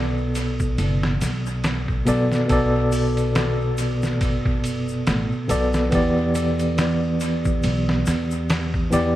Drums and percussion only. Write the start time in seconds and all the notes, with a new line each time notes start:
0.35 ride, shaker
0.60 kick, shaker
0.78 ride, shaker
1.03 snare
1.21 snare, ride, shaker
1.46 shaker
1.64 snare, ride, shaker
1.88 kick
2.07 ride, shaker
2.32 snare, shaker
2.49 kick, ride, shaker
2.92 open hi-hat, shaker
3.17 ride, shaker
3.35 snare, ride, shaker
3.78 ride, shaker
4.03 snare, shaker
4.21 kick, ride, shaker
4.46 kick
4.64 ride, shaker
4.88 shaker
5.07 snare, ride, shaker
5.49 ride, shaker
5.73 snare, shaker
5.92 kick, ride, shaker
6.35 ride, shaker
6.59 ride, shaker
6.78 snare, ride, shaker
7.20 ride, shaker
7.45 kick, shaker
7.63 ride, shaker
7.89 snare
8.06 snare, ride, shaker
8.31 shaker
8.49 snare, ride, shaker
8.74 kick
8.93 ride, shaker